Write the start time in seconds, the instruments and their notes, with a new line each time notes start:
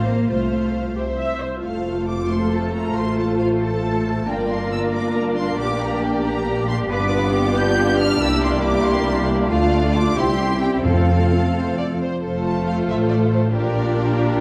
Already playing: double bass section A1, viola section F4, violin section C5 F5
0.06 cello section A#3
0.29 double bass section C2, cello section A3, viola section F4, violin section C5 F5
0.95 double bass section C2, viola section G4, violin section C5 E5
1.18 viola section E5
1.40 viola section C5
1.62 double bass section F1, french horn section A3 F4, viola section A3 F4, violin section A4 C5 F5
2.07 violin section D6
2.29 cello section A4, violin section C6
2.52 violin section A5
2.74 violin section A#5
2.96 double bass section A1, cello section F4, violin section C6
3.18 violin section A5
3.40 violin section F5
3.61 cello section A4, violin section A5
4.26 double bass section G1, french horn section A#3 F4, viola section A#3 D4, violin section F4 D5 G5, cello section A#4
4.50 violin section C6
4.71 violin section E6
4.93 violin section D6
5.14 violin section A#5
5.36 violin section C6
5.59 double bass section A#1, violin section G4 D6, cello section G4, french horn section G4
5.82 violin section A#5
6.04 violin section G5
6.24 cello section G4, violin section A#5
6.68 violin section C6
6.89 double bass section G1, viola section B3 D4, french horn section B3, violin section F4 D5 D6, cello section B4
7.11 cello section B4
7.33 cello section G4
7.56 french horn section F4, violin section G6
7.98 violin section F6
8.19 double bass section C2, viola section A#3, french horn section A#3 E4, violin section E4 E6, cello section G4
8.43 violin section C6
8.64 violin section D6
8.86 violin section C6
9.50 double bass section D2, viola section A3 D4, french horn section A3 F4, cello section F4, violin section F4 D5 F5
9.94 violin section D6
10.16 double bass section C2, french horn section G3 E4, viola section C4 E4, cello section G4, violin section G4 G5 C6
10.62 violin section G5
10.85 timpani F2, double bass section F2, french horn section A3 F4, viola section F4, violin section A4 F5, cello section A4
11.55 violin section C5
11.78 violin section D5
12.01 violin section C5
12.23 double bass section F1, cello section F2, viola section A3 F4, violin section A4 C5
12.46 violin section A5
12.67 violin section F5
12.89 double bass section A1, cello section A2, violin section E5
13.10 violin section D5
13.33 violin section C5
13.54 double bass section A#1, cello section A#2, viola section D4 F4, violin section G4 A#4 D5